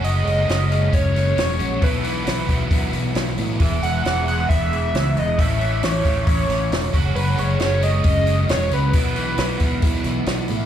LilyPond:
<<
  \new Staff \with { instrumentName = "Analog synth lead" } { \time 4/4 \key fis \dorian \tempo 4 = 135 dis''2 cis''2 | b'2 r2 | r8 fis''4 fis''8 e''4. dis''8 | e''4 cis''4 cis''4. r8 |
b'8 cis''4 dis''4. cis''8 b'8~ | b'2. r4 | }
  \new Staff \with { instrumentName = "Overdriven electric guitar" } { \time 4/4 \key fis \dorian <fis gis cis' fis'>2.~ <fis gis cis' fis'>8 r8 | <b, e fis b e'>1 | <e gis b e'>1 | <a, e a cis' e'>2.~ <a, e a cis' e'>8 <fis gis cis' fis'>8~ |
<fis gis cis' fis'>2.~ <fis gis cis' fis'>8 r8 | <b, e b e' fis'>1 | }
  \new Staff \with { instrumentName = "Overdriven electric guitar" } { \clef bass \time 4/4 \key fis \dorian fis8 gis8 fis8 gis8 cis'8 fis8 gis8 cis'8 | b,8 e8 e8 fis8 b8 e8 fis8 b8 | e8 gis8 e8 gis8 b8 e8 gis8 b8 | a,8 e8 e8 a8 cis'8 e8 a8 fis8 |
fis8 gis8 fis8 gis8 cis'8 fis8 gis8 cis'8 | b,8 e8 e8 b8 e'8 e8 b8 e'8 | }
  \new Staff \with { instrumentName = "Fingered electric bass" } { \clef bass \time 4/4 \key fis \dorian fis,,8 fis,,8 fis,,4 fis,,4 e,,8 ais,,8 | b,,4 b,,8 b,,8 b,,8 b,,8 b,,8 a,8 | e,,8 e,,8 e,,4 e,,4 cis,8 e,,8 | a,,4 a,,8 a,,8 a,,8 a,,8 e,,8 fis,,8 |
fis,,8 fis,,8 fis,,4 fis,,4 e,,8 cis,8 | b,,4 b,,8 b,,8 b,,8 b,,8 b,,8 a,8 | }
  \new DrumStaff \with { instrumentName = "Drums" } \drummode { \time 4/4 hho8 hho8 <hho sn>8 hho8 <hho bd>8 <hho sn>8 <hho sn>8 hho8 | <hho bd>8 hho8 <hho sn>8 <hho bd>8 <hho bd>8 hho8 <hho sn>16 sn16 hho8 | <hho bd>8 hho8 <hho sn>8 hho8 <hho bd>8 hho8 <hho sn>8 hho8 | <hho bd>8 hho8 <hho sn>8 <hho bd>8 <hho bd>8 <hho sn>8 <hho sn>8 <hho bd>8 |
hho8 hho8 <hho sn>8 hho8 <hho bd>8 hho8 <hho sn>16 sn16 hho8 | <hho bd>8 hho8 <hho sn>8 <hho bd>8 <hho bd>8 <hho sn>8 <hho sn>8 hho8 | }
>>